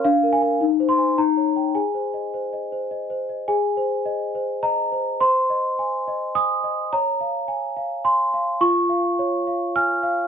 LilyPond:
\new Staff \with { instrumentName = "Celesta" } { \time 3/4 \key aes \major \tempo 4 = 105 << { f''8 aes''4 c'''8 bes''4 | aes''2~ aes''8 r8 | aes''2 bes''4 | c'''2 ees'''4 |
bes''2 c'''4 | des'''2 f'''4 | } \\ { \tuplet 3/2 { d'8 bes'8 <bes' aes''>8 ees'8 c''8 <c'' aes''>8 ees'8 des''8 <des'' g''>8 } | \tuplet 3/2 { aes'8 c''8 ees''8 c''8 ees''8 c''8 ees''8 c''8 ees''8 } | aes'8 c''8 ees''8 c''8 ees''8 c''8 | c''8 ees''8 aes''8 ees''8 aes''8 ees''8 |
des''8 f''8 aes''8 f''8 aes''8 f''8 | f'8 f''8 des''8 f''8 aes''8 f''8 | } >> }